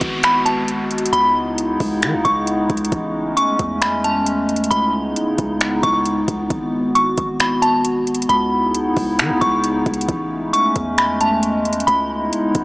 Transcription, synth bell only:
0.00 0.21 C#6 medium
0.24 0.45 B5 medium
0.46 0.67 A5 medium
1.13 1.55 B5 medium
2.25 2.46 C#6 medium
3.37 3.79 C#6 medium
3.82 4.03 B5 medium
4.04 4.25 A5 medium
4.71 5.13 B5 loud
5.83 6.04 C#6 medium
6.95 7.37 C#6 medium
7.41 7.62 B5 medium
7.62 7.83 A5 medium
8.29 8.71 B5 medium
9.41 9.63 C#6 medium
10.53 10.95 C#6 medium
10.98 11.19 B5 medium
11.21 11.42 A5 medium
11.87 12.29 B5 medium

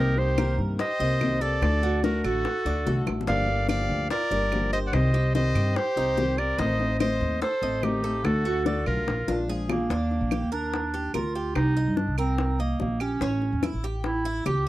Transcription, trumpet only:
0.00 0.17 G4 medium
0.17 0.59 G4 medium
0.79 1.43 C5 medium
1.41 2.02 A4 medium
2.03 2.24 F#4 medium
2.24 3.07 F#4 medium
3.28 3.66 D5 medium
3.70 4.08 D5 medium
4.11 4.69 A#4 medium
4.73 4.79 C5 medium
4.87 4.95 D5 medium
4.93 5.35 C5 medium
5.35 5.77 C5 medium
5.76 6.39 G4 medium
6.38 6.60 A#4 medium
6.58 6.99 C5 medium
7.00 7.38 C5 medium
7.42 7.84 A4 medium
7.83 8.25 D#4 medium
8.24 8.65 F#4 medium
8.66 8.85 F#4 medium
8.86 9.45 F4 medium

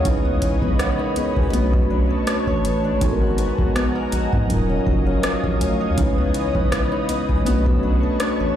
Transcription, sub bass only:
0.05 0.34 C#2 loud
0.62 0.76 B1 medium
1.16 1.24 C#2 soft
1.37 1.55 C#2 medium
1.53 2.12 B1 loud
2.47 2.61 A1 medium
2.65 2.94 A1 medium
3.01 3.46 G#1 loud
4.13 4.28 A#1 medium
4.33 4.51 G#2 loud
4.50 4.79 D#1 loud
4.87 5.16 F#1 medium
5.44 5.57 A#1 medium
5.61 5.90 D2 medium
5.98 6.27 C#2 loud
6.55 6.68 B1 medium
7.09 7.17 C#2 soft
7.29 7.48 C#2 medium
7.46 8.04 B1 medium
8.40 8.54 A1 medium

